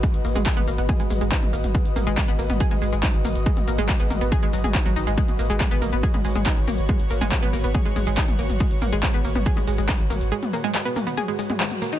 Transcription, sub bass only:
X:1
M:4/4
L:1/16
Q:1/4=140
K:G#m
V:1 name="Sub bass" clef=bass
z G,,, G,,, G,,, z G,,, G,,, G,,, z G,,, G,,, G,,, z G,,, G,,, G,,, | z G,,, G,,, G,,, z G,,, G,,, G,,, z G,,, G,,, G,,, z G,,, G,,, G,,, | z G,,, G,,, G,,, z G,,, G,,, G,,, z G,,, G,,, G,,, z G,,, G,,, G,,, | z G,,, G,,, G,,, z G,,, G,,, G,,, z G,,, G,,, G,,, z G,,, G,,, G,,, |
z G,,, G,,, G,,, z G,,, G,,, G,,, z G,,, G,,, G,,, z G,,, G,,, G,,, | z G,,, G,,, G,,, z G,,, G,,, G,,, z G,,, G,,, G,,, z G,,, G,,, G,,, | z16 |]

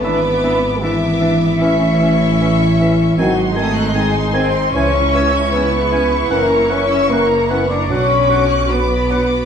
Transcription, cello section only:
X:1
M:4/4
L:1/16
Q:1/4=76
K:A
V:1 name="Cello section"
B,4 E,12 | F,2 A,2 G,2 ^B,2 C4 =B,4 | ^A,2 C2 A,2 B, D C4 B,4 |]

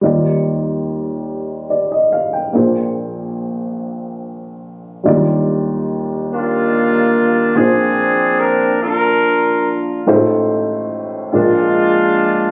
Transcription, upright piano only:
X:1
M:6/8
L:1/16
Q:3/8=48
K:Eb
V:1 name="Upright piano"
z8 d e f g- | g z8 z3 | z12 | z12 |
z12 |]
V:2 name="Upright piano"
[E,,E,G,EFd]12 | [B,,,B,,B,DAc]12 | [E,,E,_G,=G,DFd]12 | [B,,,B,,B,DAc]12 |
[=A,,,=A,,_A,=A,EFc]6 [B,,,B,,_A,DFB]6 |]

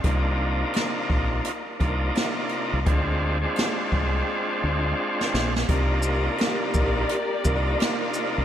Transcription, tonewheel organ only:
X:1
M:4/4
L:1/16
Q:"Swing 16ths" 1/4=85
K:Cm
V:1 name="Tonewheel organ"
[C,B,DEF]8 z2 [C,B,DEF]6 | [A,CDF]3 [A,CDF]12 z | [C,B,DEF]8 z2 [C,B,DEF]6 |]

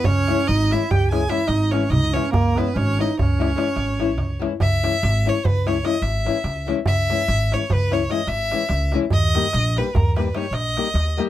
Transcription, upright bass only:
X:1
M:11/8
L:1/8
Q:1/4=146
K:none
V:1 name="Upright bass" clef=bass
^C,,2 ^G,,,2 C,,3 G,,,2 C,,2 | ^C,,2 ^G,,,2 C,,3 G,,,2 C,,2 | ^C,,2 ^G,,,2 C,,3 G,,,2 C,,2 | ^C,,2 ^G,,,2 C,,3 G,,,2 C,,2 |
^D,,2 ^A,,,2 D,,3 A,,,2 D,,2 |]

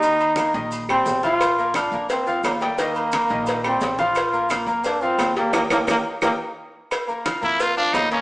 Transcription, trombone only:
X:1
M:4/4
L:1/8
Q:1/4=174
K:Eblyd
V:1 name="Trombone"
E3 z2 C2 F- | F2 D2 C2 B, B,- | B,4- B, C2 F- | F2 B,2 D C2 B, |
B, B, B, z B, z3 | z8 |]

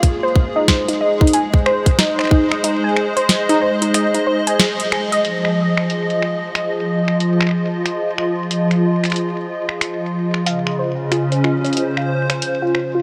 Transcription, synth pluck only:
X:1
M:4/4
L:1/16
Q:"Swing 16ths" 1/4=92
K:Fm
V:1 name="Synth pluck"
z c z E c E e E a z c z E c E e | E a z c z E c E e E c a A z A e | z16 | z16 |
f z c z F c F d F f z c z F c F |]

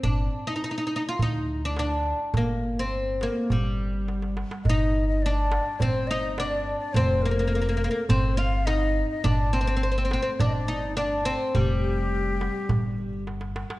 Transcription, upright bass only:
X:1
M:4/4
L:1/8
Q:1/4=104
K:Gm
V:1 name="Upright bass" clef=bass
G,,, z3 D,,4 | G,,,4 G,,,4 | G,,,4 G,,,4 | F,,,4 G,,,4 |
G,,,4 G,,,4 | F,,,4 G,,,4 |]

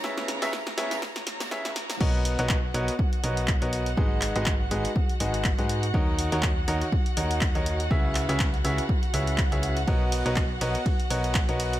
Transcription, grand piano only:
X:1
M:4/4
L:1/16
Q:"Swing 16ths" 1/4=122
K:B
V:1 name="Grand piano"
[C,EGBce]3 [C,EGBce] z2 [C,EGBce] z4 z [C,EGBce] z3 | [B,FABcd]3 [B,FABcd] z2 [B,FABcd] z3 [B,FABcd]2 z [B,FABcd]2 z | [G,DFGBd]3 [G,DFGBd] z2 [G,DFGBd] z3 [G,DFGBd]2 z [G,DFGBd]2 z | [D,DFAcd]3 [D,DFAcd] z2 [D,DFAcd] z3 [D,DFAcd]2 z [D,DFAcd]2 z |
[C,EGBce]3 [C,EGBce] z2 [C,EGBce] z3 [C,EGBce]2 z [C,EGBce]2 z | [B,FABcd]3 [B,FABcd] z2 [B,FABcd] z3 [B,FABcd]2 z [B,FABcd]2 z |]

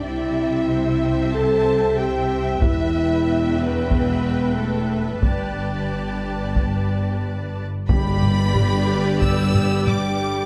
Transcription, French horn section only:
X:1
M:4/4
L:1/8
Q:1/4=92
K:G
V:1 name="French horn section"
E4 A2 G2 | E3 B, B,2 A,2 | G,6 z2 | [G,G]8 |]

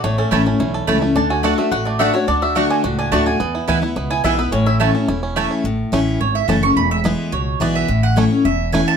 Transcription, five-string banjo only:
X:1
M:4/4
L:1/8
Q:1/4=214
K:A
V:1 name="Five-string banjo"
A, C A, C E A E A, | D F A A, F A, D F | D F A, D F D A, F | B, E E E B, E E B, |
C E A, C E C A, E | z2 [A,CE] z3 [A,CE] z | z2 [B,E] z3 [B,E] z | z2 [A,CE] z3 [A,CE] z |]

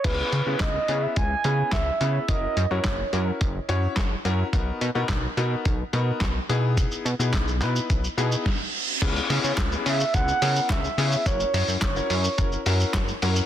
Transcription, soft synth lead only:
X:1
M:4/4
L:1/16
Q:1/4=107
K:C#dor
V:1 name="Soft synth lead"
B4 d3 e g4 e4 | d3 c4 z8 z | z16 | z16 |
z6 e2 f4 e4 | c4 c8- c2 z2 |]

